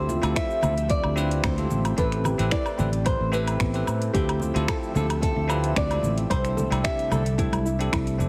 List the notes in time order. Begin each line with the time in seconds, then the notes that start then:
Already playing: D2 D3 F3 A3 C4 E4 F4 G4 A4 C5 E5
0.09 F4, low conga, cabasa
0.22 D2 C4 E4 F4 G4 A4, closed hi-hat, cabasa, low woodblock
0.36 E4 E5, finger snap, kick, closed hi-hat, cabasa
0.51 cabasa
0.61 D2 C4 E4 F4 G4 A4, low conga, cabasa, low woodblock
0.78 closed hi-hat, cabasa
0.89 C4 E4 F4 G4 A4 D5, kick, closed hi-hat, cabasa
1.04 D2, low woodblock
1.16 C4 D4 E4 F4 G4 B4, cabasa
1.31 closed hi-hat, cabasa
1.44 D2 C4 C5, finger snap, kick, closed hi-hat, cabasa, low woodblock
1.57 C4 E4 F4 G4 A4, closed hi-hat, high conga, cabasa
1.70 A1, low conga, cabasa
1.85 closed hi-hat, cabasa, low woodblock
1.97 A1 C4 E4 G4 A4 B4, kick, closed hi-hat, cabasa
2.12 finger snap, closed hi-hat
2.24 G4, low conga, cabasa, low woodblock
2.38 A1 C4 E4 G4 A4 B4, closed hi-hat, cabasa
2.51 E4 D5, finger snap, kick, closed hi-hat, cabasa
2.66 cabasa, low woodblock
2.78 A1 C4 E4 G4 A4 B4, low conga, cabasa
2.93 closed hi-hat, cabasa
3.05 C4 E4 G4 A4 B4 C5, kick, closed hi-hat, cabasa, low woodblock
3.20 A1
3.32 C4 E4 G4 A4 B4, cabasa
3.47 closed hi-hat, cabasa, low woodblock
3.60 A1 B3, finger snap, kick, closed hi-hat, cabasa
3.73 C4 E4 G4 A4 B4, closed hi-hat, cabasa
3.87 A2, cabasa, low woodblock
4.02 closed hi-hat, cabasa
4.13 D2 D3 F3 C4 E4 F4 G4 A4 E5, kick, closed hi-hat, cabasa
4.29 closed hi-hat, low woodblock
4.40 F4, low conga, cabasa
4.54 D2 C4 E4 F4 G4 A4, closed hi-hat, cabasa
4.68 E4 A4, finger snap, kick, closed hi-hat, cabasa, low woodblock
4.83 cabasa
4.94 D2 C4 E4 F4 G4 A4, low conga, cabasa
5.10 closed hi-hat, cabasa, low woodblock
5.21 C4 E4 F4 G4 A4, kick, closed hi-hat, cabasa
5.36 D2
5.48 C4 D4 E4 F4 G4 B4, cabasa, low woodblock
5.64 closed hi-hat, cabasa
5.76 D2 C4 D5, finger snap, kick, closed hi-hat, cabasa
5.90 C4 E4 F4 G4 A4, closed hi-hat, high conga, cabasa, low woodblock
6.03 A1, low conga, cabasa
6.18 closed hi-hat, cabasa
6.30 C2 C3 G3 A3 C4 D4 E4 G4 A4 C5, kick, closed hi-hat, cabasa, low woodblock
6.45 finger snap, closed hi-hat, cabasa
6.57 A4, high conga, low conga, cabasa
6.70 C2 C4 D4 E4 G4 A4, closed hi-hat, cabasa, low woodblock
6.84 G4 E5, finger snap, kick, closed hi-hat, cabasa
6.99 closed hi-hat, cabasa
7.10 C2 C4 D4 E4 G4 A4, low conga, cabasa, low woodblock
7.26 closed hi-hat, cabasa
7.38 C4 D4 E4 G4 A4, kick, closed hi-hat, cabasa
7.52 C2, closed hi-hat, high conga, cabasa, low woodblock
7.65 E4, cabasa
7.79 C4 D4 E4 G4 A4, closed hi-hat, cabasa
7.92 C2 E4, finger snap, kick, closed hi-hat, cabasa, low woodblock
8.07 closed hi-hat, cabasa
8.18 G1 C4 D4 E4 G4 A4, cabasa